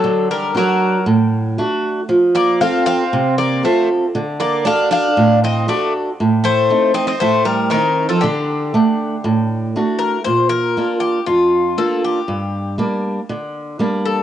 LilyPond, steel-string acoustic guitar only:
\new Staff \with { instrumentName = "Steel-string acoustic guitar" } { \time 4/4 \key d \phrygian \tempo 4 = 118 d4 <fis d' fis'>4 a,4 <a d' fis'>4 | f4 <c' f' a'>4 c4 <c' f' a'>4 | d4 <d' fis' a'>4 a,4 <d' fis' a'>4 | a,4 <a c' ees'>4 a,4 <c' ees'>4 |
d4 <a d' fis''>4 a,4 <a d' fis'>4 | bes,4 <bes d' f'>4 f,4 <bes d' f'>4 | g,4 <g bes d'>4 d4 <g bes d'>4 | }